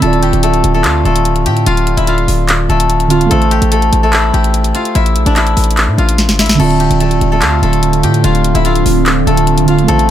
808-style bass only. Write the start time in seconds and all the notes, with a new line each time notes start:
0.02 D1
0.33 D1
0.64 D1
0.84 D2
1.05 D1
1.46 A2
1.67 D1
1.97 D1
2.28 D1
2.69 D1
3.31 A1
3.62 A1
3.93 A1
4.34 A1
4.95 A1
5.16 A#1
5.26 A1
5.57 A1
5.88 A2
5.98 A1
6.29 G1
6.44 A1
6.60 D1
6.90 D1
7.21 D1
7.42 D2
7.62 D1
8.04 A2
8.24 D1
8.55 D1
8.86 D1
9.27 D1
9.88 A1